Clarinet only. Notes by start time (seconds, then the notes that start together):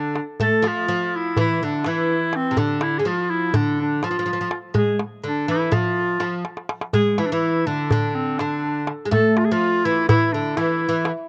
Already playing: D4
0.43 A4
0.67 F4
1.16 E4
1.40 E4
1.64 D4
1.88 E4
2.36 C4
2.58 D4
2.82 E4
2.98 G#4
3.07 F4
3.30 E4
3.56 D4
3.81 D4
4.04 F4
4.77 G#4
5.26 D4
5.51 E4
5.73 F4
6.94 G#4
7.19 E4
7.26 D4
7.33 E4
7.67 D4
8.15 C4
8.39 D4
9.12 A4
9.38 F4
9.45 G#4
9.52 F4
9.86 E4
10.09 E4
10.33 D4
10.57 E4